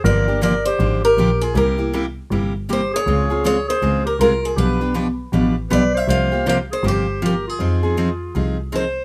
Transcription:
0.04 double bass G1, steel-string acoustic guitar D3 F3 A#3 D4 G4 D5, clarinet A#4
0.28 steel-string acoustic guitar A#3 D4 G4
0.41 steel-string acoustic guitar D3 F3 A#3 D4 G4 D5, clarinet A#4
0.65 clarinet G4, steel-string acoustic guitar C5
0.79 double bass G#1, steel-string acoustic guitar D3 F3 A#3 D4 G4
1.04 clarinet G4, steel-string acoustic guitar A#4
1.17 double bass A#1, steel-string acoustic guitar D3 F3 A#3 D4 G4
1.41 clarinet F4, steel-string acoustic guitar G#4
1.55 double bass C2, steel-string acoustic guitar C3 G3 A#3 E4 G4 A#4, clarinet G4
1.78 steel-string acoustic guitar A#3 E4 G4
1.93 steel-string acoustic guitar C3 G3 A#3 E4 G4
2.31 double bass G1, steel-string acoustic guitar C3 G3 A#3 E4 G4
2.69 steel-string acoustic guitar C3 G3 A#3 E4 G4 C5, clarinet G4
2.94 clarinet G#4, steel-string acoustic guitar C#5
3.06 double bass C#2, steel-string acoustic guitar C#3 G#3 C4 F4 G#4
3.30 steel-string acoustic guitar C4 F4 G#4
3.44 steel-string acoustic guitar C#3 G#3 C4 F4 G#4 C#5, clarinet G#4
3.68 clarinet G#4, steel-string acoustic guitar C5
3.82 double bass C#2, steel-string acoustic guitar C#3 G#3 C4 F4 G#4
4.05 clarinet G4, steel-string acoustic guitar A#4
4.19 double bass C2, steel-string acoustic guitar C#3 G#3 C4 F4 G#4 A#4, clarinet F4
4.42 clarinet F4, steel-string acoustic guitar G#4
4.56 double bass B1, steel-string acoustic guitar B2 F3 B3 D4 G4 B4, clarinet G4
4.81 steel-string acoustic guitar B3 D4 G4 B4
4.94 steel-string acoustic guitar B2 F3 B3 D4 G4 B4
5.32 double bass A1, steel-string acoustic guitar B2 F3 B3 D4 G4 B4
5.70 double bass B1, steel-string acoustic guitar B2 F3 B3 D4 G4 B4 D5, clarinet B4
5.94 clarinet C5, steel-string acoustic guitar E5
6.08 double bass C2, steel-string acoustic guitar C3 F3 A#3 F4 G4 F5, clarinet C5
6.32 steel-string acoustic guitar A#3 F4 G4
6.46 steel-string acoustic guitar C3 F3 A#3 F4 G4 F5, clarinet C5
6.71 clarinet G#4, steel-string acoustic guitar C5
6.83 double bass G1, steel-string acoustic guitar C3 F3 A#3 F4 G4, clarinet G4
6.88 steel-string acoustic guitar C5
7.22 steel-string acoustic guitar C3 F3 A#3 F4 G4 A#4, clarinet G4
7.47 clarinet F4, steel-string acoustic guitar G#4
7.59 double bass F2, steel-string acoustic guitar F3 C4 D#4 G#4
7.83 steel-string acoustic guitar C4 D#4 G#4
7.97 steel-string acoustic guitar F3 C4 D#4 G#4
8.35 double bass C2, steel-string acoustic guitar F3 C4 D#4 G#4
8.72 steel-string acoustic guitar F3 C4 D#4 G#4 C5

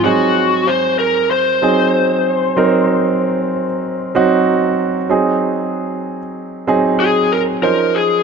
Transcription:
0.04 grand piano F#3 C4 D#4 G#4, lead electric guitar F#4
0.68 lead electric guitar C5
0.99 lead electric guitar A#4
1.31 lead electric guitar C5
1.62 grand piano F#3 C4 D#4 G#4
2.56 grand piano F#3 C4 D#4 A#4
4.15 grand piano F#3 C4 D#4 F#4
5.09 grand piano F#3 C4 D#4 G#4
6.67 grand piano F#3 C4 D#4 G#4
7.00 lead electric guitar G#4
7.32 lead electric guitar A#4
7.62 grand piano F3 C#4 D#4 C5, lead electric guitar A#4
7.95 lead electric guitar G#4

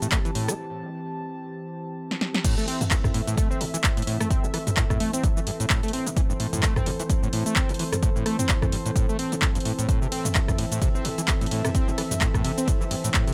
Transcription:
Already playing: analog synth pad E3 C4 G4 A5
0.02 acid bass A2, closed hi-hat, shaker
0.12 acid bass A3, kick, clap, closed hi-hat, shaker
0.25 acid bass E3, closed hi-hat, shaker
0.35 acid bass A2, open hi-hat
0.48 acid bass A3, cross-stick, closed hi-hat, shaker
2.11 snare
2.21 snare
2.35 snare
2.44 acid bass A2, analog synth pad E3 C4 A4 E5, kick, closed hi-hat, crash, shaker
2.58 acid bass A3, shaker
2.68 acid bass C4, open hi-hat
2.81 acid bass A2, closed hi-hat, mid tom, shaker
2.91 acid bass E3, kick, clap, closed hi-hat, shaker
3.04 acid bass G2, kick, cross-stick, mid tom, shaker
3.14 acid bass A2, open hi-hat
3.27 acid bass A2, closed hi-hat, shaker
3.37 acid bass A3, kick, closed hi-hat, shaker
3.51 acid bass C4, shaker
3.61 acid bass A2, open hi-hat
3.74 acid bass E3, closed hi-hat, shaker
3.84 acid bass G2, kick, clap, closed hi-hat, shaker
3.97 acid bass A2, closed hi-hat, shaker
4.02 closed hi-hat
4.07 acid bass A2, open hi-hat
4.20 acid bass A3, cross-stick, closed hi-hat, mid tom, shaker
4.30 acid bass C4, kick, closed hi-hat, shaker
4.44 acid bass A2, shaker
4.54 acid bass E3, cross-stick, open hi-hat
4.67 acid bass G2, closed hi-hat, mid tom, shaker
4.77 acid bass A2, kick, clap, closed hi-hat, shaker
4.90 acid bass A2, kick, cross-stick, mid tom, shaker
5.00 acid bass A3, open hi-hat
5.13 acid bass C4, closed hi-hat, shaker
5.24 acid bass A2, kick, closed hi-hat, shaker
5.37 acid bass E3, shaker
5.47 acid bass G2, open hi-hat
5.60 acid bass A2, closed hi-hat, shaker
5.70 acid bass A2, kick, clap, closed hi-hat, shaker
5.83 acid bass A3, closed hi-hat, shaker
5.88 closed hi-hat
5.93 acid bass C4, open hi-hat
6.07 acid bass A2, closed hi-hat, shaker
6.17 acid bass E3, analog synth pad C5, kick, closed hi-hat, shaker
6.30 acid bass G2, shaker
6.40 acid bass A2, open hi-hat
6.53 acid bass A2, closed hi-hat, mid tom, shaker
6.63 acid bass A3, kick, clap, closed hi-hat, shaker
6.76 acid bass C4, kick, cross-stick, mid tom, shaker
6.86 acid bass A2, open hi-hat
7.00 acid bass E3, closed hi-hat, shaker
7.10 acid bass G2, kick, closed hi-hat, shaker
7.23 acid bass A2, shaker
7.33 acid bass A2, open hi-hat
7.46 acid bass A3, closed hi-hat, shaker
7.56 acid bass C4, kick, clap, closed hi-hat, shaker
7.69 acid bass A2, closed hi-hat, shaker
7.74 closed hi-hat
7.79 acid bass E3, open hi-hat
7.93 acid bass G2, cross-stick, closed hi-hat, mid tom, shaker
8.03 acid bass A2, kick, closed hi-hat, shaker
8.16 acid bass A2, shaker
8.26 acid bass A3, cross-stick, open hi-hat
8.39 acid bass C4, closed hi-hat, mid tom, shaker
8.49 acid bass A2, kick, clap, closed hi-hat, shaker
8.62 acid bass E3, kick, cross-stick, mid tom, shaker
8.72 acid bass G2, open hi-hat
8.86 acid bass A2, closed hi-hat, shaker
8.96 acid bass A2, kick, closed hi-hat, shaker
9.09 acid bass A3, shaker
9.19 acid bass C4, open hi-hat
9.32 acid bass A2, closed hi-hat, shaker
9.42 acid bass E3, kick, clap, closed hi-hat, shaker
9.55 acid bass G2, closed hi-hat, shaker
9.60 closed hi-hat
9.65 acid bass A2, open hi-hat
9.79 acid bass A2, closed hi-hat, shaker
9.89 acid bass A2, analog synth pad E5, kick, closed hi-hat, shaker
10.02 acid bass C3, shaker
10.12 acid bass C4, open hi-hat, ride
10.25 acid bass A2, closed hi-hat, mid tom, shaker
10.35 acid bass E3, kick, clap, closed hi-hat, shaker
10.48 acid bass G2, kick, cross-stick, mid tom, shaker
10.58 acid bass A2, open hi-hat, ride
10.72 acid bass A2, closed hi-hat, shaker
10.82 acid bass C3, kick, closed hi-hat, shaker
10.95 acid bass C4, shaker
11.05 acid bass A2, open hi-hat, ride
11.18 acid bass E3, closed hi-hat, shaker
11.28 acid bass G2, kick, clap, closed hi-hat, shaker
11.41 acid bass A2, closed hi-hat, shaker
11.46 closed hi-hat
11.51 acid bass A2, open hi-hat, ride
11.65 acid bass C3, cross-stick, closed hi-hat, mid tom, shaker
11.75 acid bass C4, kick, closed hi-hat, shaker
11.88 acid bass A2, shaker
11.98 acid bass E3, cross-stick, open hi-hat, ride
12.11 acid bass G2, closed hi-hat, mid tom, shaker
12.21 acid bass A2, kick, clap, closed hi-hat, shaker
12.34 acid bass A2, kick, cross-stick, mid tom, shaker
12.44 acid bass C3, open hi-hat, ride
12.58 acid bass C4, closed hi-hat, shaker
12.68 acid bass A2, kick, closed hi-hat, shaker
12.81 acid bass E3, shaker
12.91 acid bass G2, open hi-hat, ride
13.04 acid bass A2, closed hi-hat, shaker
13.14 acid bass A2, kick, clap, closed hi-hat, shaker
13.27 acid bass C3, closed hi-hat, shaker

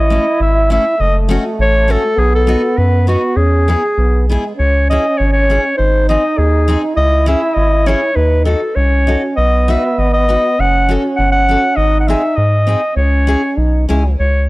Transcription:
Already playing: analog synth bass A1, euphonium E4, clarinet D#5
0.10 steel-string acoustic guitar A3 C#4 E4
0.40 analog synth bass G#1, clarinet E5
0.70 steel-string acoustic guitar A3 C#4 E4, clarinet E5
0.98 analog synth bass F#1, euphonium A3, clarinet D#5
1.29 steel-string acoustic guitar A3 C#4 F#4
1.59 analog synth bass A1, clarinet C#5
1.88 steel-string acoustic guitar A3 C#4 F#4, clarinet A4
2.16 analog synth bass B1, euphonium B3, clarinet G#4
2.35 clarinet A4
2.47 steel-string acoustic guitar B3 D#4 F#4
2.77 analog synth bass F#2, clarinet B4
3.07 steel-string acoustic guitar B3 D#4 F#4, clarinet F#4
3.36 analog synth bass E2, euphonium C#4, clarinet G#4
3.68 steel-string acoustic guitar B3 E4 G#4
3.97 analog synth bass B1, euphonium B3
4.29 euphonium G#3, steel-string acoustic guitar B3 E4 G#4
4.56 analog synth bass C#2, euphonium C#4, clarinet C#5
4.90 steel-string acoustic guitar C#4 E4 G#4, clarinet D#5
5.18 analog synth bass G#1, clarinet C#5
5.32 clarinet C#5
5.50 steel-string acoustic guitar C#4 E4 G#4
5.77 analog synth bass G#1, euphonium D#4, clarinet C5
6.09 steel-string acoustic guitar C4 D#4 G#4, clarinet D#5
6.38 analog synth bass D#2, clarinet G#4
6.68 steel-string acoustic guitar C4 D#4 G#4
6.95 analog synth bass C#2, euphonium E4, clarinet D#5
7.26 steel-string acoustic guitar C#4 E4 G#4, clarinet E5
7.54 analog synth bass G#1, clarinet D#5
7.86 steel-string acoustic guitar C#4 E4 G#4, clarinet C#5
8.14 analog synth bass D#2, euphonium D#4, clarinet B4
8.45 steel-string acoustic guitar D#4 F#4 A4, clarinet A4
8.75 analog synth bass C2, euphonium C#4, clarinet C#5
9.07 steel-string acoustic guitar D#4 F#4 A4
9.37 analog synth bass B1, euphonium B3, clarinet D#5
9.68 steel-string acoustic guitar D#4 F#4 B4, clarinet E5
9.98 analog synth bass G#1, clarinet D#5
10.13 clarinet D#5
10.29 steel-string acoustic guitar D#4 F#4 B4
10.59 analog synth bass F#1, euphonium C#4, clarinet F#5
10.89 steel-string acoustic guitar C#4 F#4 A4
11.16 analog synth bass G1, clarinet F#5
11.32 clarinet F#5
11.49 steel-string acoustic guitar C#4 F#4 A4
11.76 analog synth bass G#1, euphonium D#4, clarinet D#5
12.00 clarinet F#5
12.08 steel-string acoustic guitar C4 D#4 G#4, clarinet E5
12.36 analog synth bass G#2, clarinet D#5
12.67 steel-string acoustic guitar C4 D#4 G#4
12.95 analog synth bass C#2, euphonium C#4, clarinet C#5
13.27 steel-string acoustic guitar C#4 E4 G#4
13.57 analog synth bass B1, euphonium D#4
13.89 analog synth bass C#2, euphonium G#3, steel-string acoustic guitar C#4 E4 G#4
14.19 analog synth bass C#2, clarinet C#5

